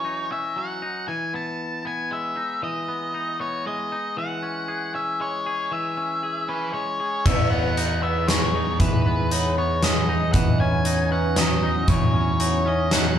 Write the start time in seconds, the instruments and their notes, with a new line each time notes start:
Already playing: clean electric guitar E3 F#3 C#4, lead electric guitar C#5
0.05 clean electric guitar D#4
0.31 clean electric guitar C#4, lead electric guitar E5
0.56 clean electric guitar F#3, lead electric guitar F#5
0.82 clean electric guitar D#4
1.08 clean electric guitar E3, lead electric guitar G#5
1.34 clean electric guitar B3, lead electric guitar A5
1.85 clean electric guitar B3, lead electric guitar G#5
2.11 clean electric guitar G#3, lead electric guitar E5
2.37 clean electric guitar D#4
2.63 clean electric guitar E3, lead electric guitar D#5
2.88 clean electric guitar B3
3.14 clean electric guitar D#4
3.40 clean electric guitar B3, lead electric guitar C#5
3.67 clean electric guitar G#3, lead electric guitar D#5
3.92 clean electric guitar D#4
4.17 clean electric guitar E3, lead electric guitar F#5
4.43 clean electric guitar C#4
4.68 clean electric guitar G#4
4.94 clean electric guitar C#4, lead electric guitar E5
5.20 clean electric guitar G#3, lead electric guitar C#5
5.46 clean electric guitar G#4
5.71 clean electric guitar E3, lead electric guitar E5
5.97 clean electric guitar C#4
6.23 clean electric guitar G#4
6.49 clean electric guitar C#4, lead electric guitar B4
6.74 clean electric guitar G#3, lead electric guitar C#5
7.00 clean electric guitar G#4
7.25 picked electric bass E2, clean electric guitar E3, ambient pad E3 B3 D#4 G#4, lead electric guitar E5, vibraphone E5, kick, crash
7.51 clean electric guitar B3, vibraphone D#5, lead electric guitar F#5
7.77 clean electric guitar D#4, closed hi-hat
8.03 clean electric guitar B3, vibraphone B4, lead electric guitar E5
8.28 clean electric guitar G#3, lead electric guitar C#5, snare, closed hi-hat
8.55 clean electric guitar D#4
8.80 picked electric bass E2, clean electric guitar E3, lead electric guitar B4, kick, closed hi-hat
9.06 clean electric guitar B3
9.31 clean electric guitar D#4, vibraphone C#5, closed hi-hat
9.58 clean electric guitar B3, lead electric guitar C#5
9.82 clean electric guitar G#3, vibraphone D#5, lead electric guitar D#5, snare, closed hi-hat
10.09 clean electric guitar D#4
10.33 picked electric bass E2, clean electric guitar E3, ambient pad C#4, vibraphone D#5, lead electric guitar F#5, kick, closed hi-hat
10.59 clean electric guitar C#4, vibraphone C#5, lead electric guitar G#5
10.85 clean electric guitar D#4, closed hi-hat
11.11 clean electric guitar C#4, vibraphone B4, lead electric guitar F#5
11.36 clean electric guitar F#3, lead electric guitar D#5, snare, closed hi-hat
11.63 clean electric guitar D#4
11.88 picked electric bass E2, clean electric guitar E3, lead electric guitar C#5, kick, closed hi-hat
12.14 clean electric guitar C#4
12.40 clean electric guitar D#4, vibraphone C#5, closed hi-hat
12.66 clean electric guitar C#4, lead electric guitar D#5
12.91 clean electric guitar F#3, lead electric guitar F#5, snare, closed hi-hat